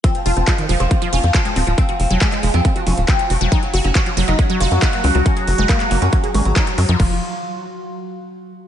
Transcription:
<<
  \new Staff \with { instrumentName = "Synth drone" } { \time 4/4 \key f \phrygian \tempo 4 = 138 r1 | r1 | <ges ges'>1~ | <ges ges'>1 |
r1 | }
  \new Staff \with { instrumentName = "Synth arpeggio sound" } { \clef bass \time 4/4 \key f \phrygian f16 r16 f'16 c'16 f'16 ees16 f16 f16 c'16 f16 f'16 r16 f'16 aes16 c'16 f16 | c'16 ges'16 r16 ges16 ges16 aes16 aes16 f16 c'16 ges'16 f16 r16 ges16 f16 ges'16 ges16 | ges16 r16 ges'16 des'16 ges'16 f16 ges16 ges16 des'16 ges16 ges'16 r16 ges'16 bes16 des'16 ges16 | des'16 aes'16 r16 aes16 aes16 bes16 bes16 ges16 des'16 aes'16 aes16 r16 ges16 ges16 ges16 f16 |
f8 r2. r8 | }
  \new Staff \with { instrumentName = "Oud" } { \clef bass \time 4/4 \key f \phrygian c'16 f16 f16 f16 aes16 f16 f16 c'16 f16 f16 des'16 f16 c'16 f16 f16 f16 | c'16 f16 f16 f16 aes16 f16 f16 c'16 f16 f16 des'16 f16 c'16 f16 f16 f16 | ees'16 ges16 ges16 ges16 des'16 ges16 ges16 ees'16 ges16 ges16 f'16 ges16 ees'16 ges16 ges16 ges16 | des'16 ges16 ges16 ges16 bes16 ges16 ges16 des'16 ges16 ges16 des'16 ges16 ees'16 ges16 ges16 ges16 |
f'8 r2. r8 | }
  \new Staff \with { instrumentName = "Analog synth bass" } { \clef bass \time 4/4 \key f \phrygian r8 f,,16 f,,16 r8 f,,16 f,,16 r8 f,,16 f,16 r8 ees,,16 ees,,16 | r8 f,,16 f,,16 r8 f,,16 f,16 r8 f,,16 ees,,16 r8 f,,16 f,,16 | r8 ges,,16 ges,,16 r8 ges,,16 ges,,16 r8 ges,,16 ges,16 r8 des,16 des,16 | r8 ges,,16 ges,,16 r8 ges,,16 ges,16 r8 aes,,16 aes,,16 r8 ges,16 ges,16 |
f,,8 r2. r8 | }
  \new DrumStaff \with { instrumentName = "Drums" } \drummode { \time 4/4 <hh bd>16 hh16 hho16 hh16 <hc hh bd>16 hh16 hho16 hh16 <hh bd>16 hh16 hho16 hh16 <hc hh bd>16 hh16 hho16 hh16 | <hh bd>16 hh16 hho16 hh16 <hc hh bd>16 <hc hh>16 hho16 hh16 <hh bd>16 hh16 hho16 hh16 <hc hh bd>16 hh16 hho16 hh16 | <hh bd>16 hh16 hho16 hh16 <hc hh bd>16 hh16 hho16 hh16 <hh bd>16 hh16 hho16 hh16 <hc hh bd>16 hh16 hho16 hh16 | <hh bd>16 hh16 hho16 hh16 <hc hh bd>16 <hc hh>16 hho16 hh16 <hh bd>16 hh16 hho16 hh16 <hc hh bd>16 hh16 hho16 hh16 |
<cymc bd>4 r4 r4 r4 | }
>>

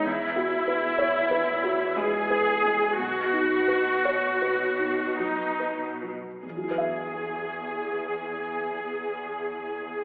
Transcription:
<<
  \new Staff \with { instrumentName = "Viola section" } { \time 3/4 \key e \major \tempo 4 = 53 e'2 gis'4 | fis'2 dis'8 r8 | gis'2. | }
  \new Staff \with { instrumentName = "Felt piano" } { \time 3/4 \key e \major \tuplet 3/2 { e,8 fis'8 b'8 cis''8 b'8 fis'8 gis8 b'8 gis8 } | \tuplet 3/2 { b,,8 dis'8 b'8 cis''8 b'8 dis'8 fis8 b'8 fis8 } | <e, e fis e' b' e''>2. | }
  \new Staff \with { instrumentName = "Cello section" } { \clef bass \time 3/4 \key e \major e,2. | b,2. | e,2. | }
>>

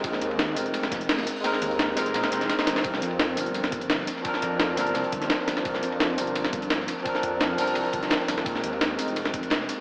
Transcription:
<<
  \new Staff \with { instrumentName = "Tine electric piano" } { \time 4/4 \key c \minor \tempo 4 = 171 <aes c' ees' bes'>4. <aes c' ees' bes'>2~ <aes c' ees' bes'>8 | <aes c' ees' bes'>4. <aes c' ees' bes'>4 <aes c' ees' c''>8 r4 | <f c' d' bes'>4. <f c' d' bes'>2~ <f c' d' bes'>8 | <f c' d' bes'>4. <f c' d' bes'>2~ <f c' d' bes'>8 |
<f c' d' bes'>4. <f c' d' bes'>2~ <f c' d' bes'>8 | <f c' d' bes'>4. <f c' d' bes'>2~ <f c' d' bes'>8 | <aes c' ees' bes'>4. <aes c' ees' bes'>2~ <aes c' ees' bes'>8 | }
  \new Staff \with { instrumentName = "Detuned saw bass" } { \clef bass \time 4/4 \key c \minor bes,,8 ees,4 f,,2 r8 | r8 ees,4 f,,8 bes,,16 r16 f,,16 f,,16 r8 f,,8 | c,8 f,4 g,,2 r8 | r8 f,4 g,,8 c,16 r16 g,,16 g,,16 r8 g,,8 |
c,8 f,4 g,,2 r8 | r8 f,4 g,,8 c,16 r16 g,,16 g,,16 r8 g,,8 | bes,,8 ees,4 f,,2 r8 | }
  \new DrumStaff \with { instrumentName = "Drums" } \drummode { \time 4/4 <hh bd cymr>16 sn16 <hh cymr tamb>16 cymr16 <hh cymr sn>16 cymr16 <hho cymr tamb>16 <hh tamb>16 <hh cymr>16 <hh sn>16 <hh bd cymr sn tamb>16 <hh tamb>16 <hh hho cymr sn>16 <cymr sn>16 <hho tamb>16 hho16 | <hh cymr sn>16 sn16 <hh cymr tamb>16 hh16 <hh cymr sn>16 cymr16 <hho cymr sn tamb>16 <hh sn tamb>16 <hh cymr sn>16 <hh cymr sn>16 <hh cymr sn tamb>16 <hh sn tamb>16 <hh cymr sn>16 <cymr sn>16 <hho sn tamb>16 <cymr sn>16 | <hh bd cymr>16 sn16 <hh cymr tamb>16 cymr16 <hh cymr sn>16 cymr16 <hho cymr tamb>16 <hh tamb>16 <hh cymr>16 <hh sn>16 <hh bd cymr tamb>16 <hh cymr tamb>16 <hh cymr sn>16 sn16 <hho cymr sn tamb>16 sn16 | <hh bd cymr>16 sn16 <hh bd cymr tamb>8 <hh cymr sn>8 <hho cymr sn tamb>16 <hh tamb>16 <hh cymr sn>16 hh16 <hh bd cymr tamb>16 <hh sn tamb>16 <hh cymr sn>16 sn16 <hho cymr sn tamb>16 sn16 |
<hh bd cymr>16 sn16 <hh cymr tamb>16 cymr16 <hh cymr sn>16 cymr16 <hho cymr tamb>16 <hh tamb>16 <hh cymr>16 <hh sn>16 <hh bd cymr tamb>16 <hh cymr tamb>16 <hh cymr sn>16 sn16 <hho cymr sn tamb>16 sn16 | <hh bd cymr>16 sn16 <hh bd cymr tamb>8 <hh cymr sn>8 <hho tamb>16 <hh tamb>16 <hh cymr>16 hh16 <hh bd cymr tamb>16 <hh sn tamb>16 <hh cymr sn>16 sn16 <hho cymr sn tamb>16 sn16 | <hh bd cymr>16 sn16 <hh cymr tamb>16 cymr16 <hh cymr sn>16 cymr16 <hho cymr tamb>16 <hh tamb>16 <hh cymr>16 <hh sn>16 <hh bd cymr tamb>16 <hh cymr tamb>16 <hh cymr sn>16 sn16 <hho cymr sn tamb>8 | }
>>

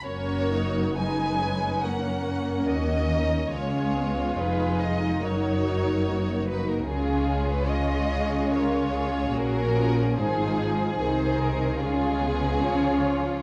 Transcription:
<<
  \new Staff \with { instrumentName = "Violin section" } { \time 4/4 \key fis \major \tempo 4 = 72 cis''4 gis''4 fis''4 dis''4 | cis''4 b'8 dis''8 cis''4. b'16 ais'16 | gis'8. b'16 dis''4 cis''4 ais'4 | gis'4 gis'16 bis'16 ais'8 gis'2 | }
  \new Staff \with { instrumentName = "Violin section" } { \time 4/4 \key fis \major << { ais'4 b'4 ais'4 fis'4 | gis'4 gis'4 ais'8 ais'8 fis'4 | gis'4 gis'4 ais'8 gis'4. | bis'4 bis'4 gis'4 cis''4 | } \\ { fis'4 dis'8 cis'4. fis'8 dis'8 | eis'2 fis'2 | eis'4 eis'4 eis'4 fis'4 | gis'2 eis'4 eis'4 | } >> }
  \new Staff \with { instrumentName = "Viola section" } { \time 4/4 \key fis \major << { cis'8 dis'8 dis'4 cis'2 | cis'8 b8 dis'2. | cis'2. cis'4 | dis'4 dis'4 cis'8 b8 cis'4 | } \\ { ais4 gis4 ais8 ais4. | gis2 fis4 ais4 | gis4 gis2 fis8 eis8 | eis4 dis4 gis4 eis4 | } >> }
  \new Staff \with { instrumentName = "Cello section" } { \clef bass \time 4/4 \key fis \major fis,2. dis,4 | cis,4 eis,4 fis,2 | cis2. ais,4 | gis,4 bis,4 cis2 | }
  \new Staff \with { instrumentName = "Double bass section" } { \clef bass \time 4/4 \key fis \major fis,,2. dis,4 | cis,4 eis,,4 fis,,2 | cis,2. ais,,4 | gis,,4 bis,,4 cis,2 | }
>>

